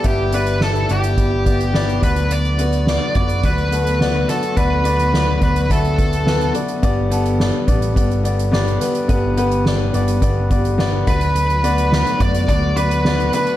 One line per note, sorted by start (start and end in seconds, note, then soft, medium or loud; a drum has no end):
0.00 1.99 G3 medium
0.00 0.03 B3 medium
0.00 13.57 B3 medium
0.00 0.27 B3 medium
0.00 0.04 G4 medium
0.00 0.28 G4 medium
0.00 2.04 B4 medium
0.00 0.34 D5 medium
0.00 0.05 E5 medium
0.04 0.85 G1 loud
0.04 0.85 G2 medium
0.04 2.01 E4 medium
0.04 0.34 G4 medium
0.04 0.28 E5 medium
0.04 kick medium
0.04 closed hi-hat medium
0.32 0.56 B3 medium
0.32 0.56 G4 medium
0.32 0.63 B4 medium
0.32 0.57 D5 medium
0.32 closed hi-hat medium
0.46 closed hi-hat soft
0.60 0.84 B3 medium
0.60 0.84 G4 medium
0.60 0.91 A4 medium
0.60 0.85 D5 medium
0.60 snare medium
0.75 closed hi-hat soft
0.88 1.16 G1 medium
0.88 1.12 B3 medium
0.88 1.13 G4 medium
0.88 1.99 G4 medium
0.88 1.13 D5 medium
0.88 closed hi-hat medium
1.04 closed hi-hat soft
1.17 1.99 G1 medium
1.17 1.41 B3 medium
1.17 1.41 G4 medium
1.17 1.41 D5 medium
1.17 kick medium
1.17 closed hi-hat medium
1.45 1.69 B3 medium
1.45 1.69 G4 medium
1.45 1.70 D5 medium
1.45 kick medium
1.45 closed hi-hat medium
1.60 closed hi-hat soft
1.73 1.97 B3 medium
1.73 1.98 G4 medium
1.73 1.98 D5 loud
1.73 snare medium
1.89 closed hi-hat soft
2.02 2.98 D2 medium
2.02 2.83 D3 medium
2.02 13.57 D3 medium
2.02 6.80 F#3 medium
2.02 6.79 A3 medium
2.02 2.49 B3 medium
2.02 2.49 F#4 medium
2.02 6.79 F#4 medium
2.02 2.32 B4 medium
2.02 2.49 D5 medium
2.02 kick medium
2.02 snare soft
2.02 closed hi-hat medium
2.16 closed hi-hat soft
2.31 3.15 D5 medium
2.31 closed hi-hat medium
2.45 closed hi-hat soft
2.58 2.82 B3 medium
2.58 2.82 F#4 medium
2.58 2.83 B4 medium
2.58 closed hi-hat medium
2.73 closed hi-hat soft
2.87 3.10 B3 medium
2.87 3.11 F#4 medium
2.87 3.11 D5 medium
2.87 snare loud
3.15 3.42 F#2 medium
3.15 3.39 B3 medium
3.15 3.39 F#4 medium
3.15 3.45 D5 medium
3.15 3.39 D5 medium
3.15 kick medium
3.15 closed hi-hat soft
3.29 closed hi-hat soft
3.43 4.25 D2 medium
3.43 3.67 B3 medium
3.43 3.67 F#4 medium
3.43 4.29 B4 medium
3.43 3.68 D5 medium
3.43 kick medium
3.43 closed hi-hat medium
3.58 closed hi-hat soft
3.71 3.95 B3 medium
3.71 3.95 F#4 medium
3.71 3.96 A4 medium
3.71 closed hi-hat medium
3.87 closed hi-hat soft
4.00 4.23 B3 medium
4.00 4.24 F#4 medium
4.00 4.24 D5 medium
4.00 snare loud
4.28 5.10 D3 medium
4.28 4.52 B3 medium
4.28 4.52 F#4 medium
4.28 4.57 A4 medium
4.28 4.52 D5 medium
4.28 snare soft
4.28 closed hi-hat medium
4.43 closed hi-hat soft
4.56 5.38 D2 medium
4.56 4.80 B3 medium
4.56 4.80 F#4 medium
4.56 5.38 B4 medium
4.56 4.80 D5 medium
4.56 kick medium
4.56 closed hi-hat medium
4.83 5.08 B3 medium
4.83 5.08 F#4 medium
4.83 5.08 D5 medium
4.83 closed hi-hat medium
4.99 closed hi-hat soft
5.13 5.36 B3 medium
5.13 5.37 F#4 medium
5.13 5.37 D5 medium
5.13 snare medium
5.41 5.68 D2 medium
5.41 5.65 B3 medium
5.41 5.65 F#4 medium
5.41 5.69 B4 medium
5.41 5.66 D5 medium
5.41 kick medium
5.41 closed hi-hat medium
5.56 closed hi-hat soft
5.69 6.51 D2 medium
5.69 5.93 B3 medium
5.69 5.93 F#4 medium
5.69 6.52 A4 medium
5.69 5.94 E5 medium
5.69 kick medium
5.69 closed hi-hat medium
5.85 closed hi-hat soft
5.97 6.21 B3 medium
5.97 6.22 F#4 medium
5.97 6.22 A4 medium
5.97 kick medium
5.97 closed hi-hat medium
6.13 closed hi-hat soft
6.25 6.49 B3 medium
6.25 6.50 F#4 medium
6.25 6.50 B4 medium
6.25 snare medium
6.41 closed hi-hat soft
6.54 6.78 B3 medium
6.54 6.78 F#4 medium
6.54 6.78 D5 medium
6.54 closed hi-hat medium
6.68 closed hi-hat soft
6.82 7.50 G1 medium
6.82 7.64 G2 medium
6.82 11.03 G3 medium
6.82 7.06 B3 medium
6.82 7.06 G4 medium
6.82 7.07 D5 loud
6.82 kick medium
6.82 closed hi-hat medium
7.10 7.34 B3 medium
7.10 7.34 G4 medium
7.10 7.35 A4 loud
7.10 closed hi-hat medium
7.26 closed hi-hat soft
7.39 7.63 B3 medium
7.39 7.63 G4 medium
7.39 7.63 D5 medium
7.39 snare medium
7.66 7.94 A1 medium
7.66 7.91 B3 medium
7.66 7.91 G4 medium
7.66 7.91 D5 medium
7.66 kick medium
7.66 closed hi-hat soft
7.82 closed hi-hat soft
7.95 8.77 G1 medium
7.95 8.19 B3 medium
7.95 8.19 G4 medium
7.95 8.20 D5 medium
7.95 kick medium
7.95 closed hi-hat medium
8.11 closed hi-hat soft
8.23 8.47 B3 medium
8.23 8.48 G4 medium
8.23 8.48 D5 medium
8.23 closed hi-hat medium
8.39 closed hi-hat soft
8.51 8.75 B3 medium
8.51 8.76 G4 medium
8.51 8.76 D5 loud
8.51 snare loud
8.68 closed hi-hat soft
8.80 9.04 B3 medium
8.80 9.04 G4 medium
8.80 9.05 B4 medium
8.80 snare soft
8.80 closed hi-hat medium
8.95 closed hi-hat soft
9.08 9.90 G1 medium
9.08 9.90 G2 medium
9.08 9.32 B3 loud
9.08 9.32 G4 medium
9.08 9.33 B4 loud
9.08 kick medium
9.08 closed hi-hat medium
9.37 9.61 B3 loud
9.37 9.61 G4 medium
9.37 9.61 B4 loud
9.37 closed hi-hat medium
9.51 closed hi-hat soft
9.65 9.89 B3 medium
9.65 9.89 G4 medium
9.65 9.90 D5 medium
9.65 snare loud
9.93 10.20 G1 medium
9.93 10.17 B3 medium
9.93 10.17 G4 medium
9.93 10.18 D5 medium
9.93 closed hi-hat medium
10.08 closed hi-hat medium
10.21 11.03 G1 medium
10.21 10.45 B3 medium
10.21 10.46 G4 medium
10.21 10.46 D5 medium
10.21 kick medium
10.21 closed hi-hat medium
10.50 10.74 B3 medium
10.50 10.74 G4 medium
10.50 10.74 D5 medium
10.50 kick medium
10.50 closed hi-hat medium
10.65 closed hi-hat medium
10.78 11.02 B3 loud
10.78 11.02 G4 medium
10.78 11.02 D5 loud
10.78 snare loud
11.06 12.02 D2 medium
11.06 11.88 D3 medium
11.06 13.57 F#3 medium
11.06 13.57 A3 medium
11.06 11.53 B3 medium
11.06 11.54 F#4 medium
11.06 13.57 F#4 medium
11.06 12.21 B4 medium
11.06 11.54 D5 medium
11.06 kick medium
11.06 closed hi-hat medium
11.21 closed hi-hat soft
11.36 closed hi-hat medium
11.50 closed hi-hat soft
11.63 11.87 B3 medium
11.63 11.87 F#4 medium
11.63 11.87 D5 medium
11.63 closed hi-hat medium
11.78 closed hi-hat soft
11.91 12.15 B3 medium
11.91 12.15 F#4 medium
11.91 12.15 D5 medium
11.91 snare medium
12.07 closed hi-hat soft
12.19 12.47 F#2 medium
12.19 12.43 B3 medium
12.19 12.44 F#4 medium
12.19 12.44 D5 medium
12.19 12.48 D5 medium
12.19 kick medium
12.19 closed hi-hat medium
12.35 closed hi-hat medium
12.47 13.29 D2 medium
12.47 12.71 B3 medium
12.47 12.71 F#4 medium
12.47 12.72 D5 medium
12.47 12.77 D5 medium
12.47 kick medium
12.47 closed hi-hat medium
12.76 13.00 B3 medium
12.76 13.00 F#4 medium
12.76 13.33 B4 medium
12.76 13.01 D5 medium
12.76 closed hi-hat medium
12.91 closed hi-hat medium
13.05 13.28 B3 medium
13.05 13.28 F#4 medium
13.05 13.29 D5 medium
13.05 snare loud
13.20 closed hi-hat soft
13.33 13.57 D3 medium
13.33 13.57 B3 medium
13.33 13.57 F#4 medium
13.33 13.57 B4 medium
13.33 snare soft
13.33 closed hi-hat medium
13.47 closed hi-hat soft